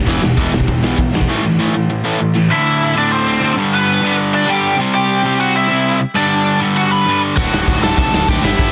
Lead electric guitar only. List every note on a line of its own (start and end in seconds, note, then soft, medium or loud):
2.51 2.93 E4 medium
2.51 2.94 E5 loud
2.98 3.11 D4 medium
2.98 3.12 D5 medium
3.12 3.54 C4 medium
3.12 3.54 C5 medium
3.74 4.16 B3 medium
3.74 4.16 B4 medium
4.34 4.48 D4 medium
4.34 4.50 D5 loud
4.49 4.77 G4 medium
4.49 4.78 G5 loud
4.94 5.36 G4 medium
4.94 5.40 G5 loud
5.40 5.54 F#4 medium
5.40 5.54 F#5 loud
5.56 5.98 E4 medium
5.56 5.98 E5 loud
6.16 6.58 D4 medium
6.16 6.58 D5 loud
6.76 6.91 F#4 medium
6.76 6.91 F#5 loud
6.91 7.19 B4 medium
6.91 7.20 B5 loud
7.36 7.79 F#4 medium
7.36 7.80 F#5 loud
7.83 7.97 A4 medium
7.83 7.98 A5 loud
7.98 8.26 A4 medium
7.98 8.27 A5 loud
8.28 8.43 G4 medium
8.28 8.44 G5 medium
8.43 8.72 E4 medium
8.43 8.72 E5 loud